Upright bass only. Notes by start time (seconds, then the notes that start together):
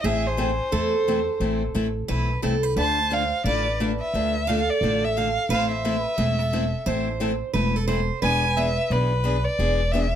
0.04 A1
0.72 E2
1.40 A1
1.75 A1
2.09 B1
2.43 C2
2.76 D2
3.44 A1
4.14 D2
4.81 A1
5.49 A1
6.18 E1
6.86 A1
7.54 E1
8.22 E1
8.90 B1
9.59 E1